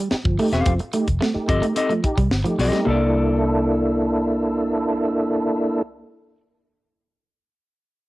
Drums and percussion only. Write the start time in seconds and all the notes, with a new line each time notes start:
0.11 snare
0.25 kick
0.39 open hi-hat
0.53 snare, closed hi-hat
0.66 kick, closed hi-hat
0.79 closed hi-hat
0.93 closed hi-hat
1.08 kick, closed hi-hat
1.22 snare
1.49 kick, closed hi-hat
1.63 closed hi-hat
1.76 closed hi-hat
1.90 closed hi-hat
2.04 kick, closed hi-hat
2.18 kick, closed hi-hat
2.31 snare
2.45 closed hi-hat
2.59 open hi-hat
2.73 snare, closed hi-hat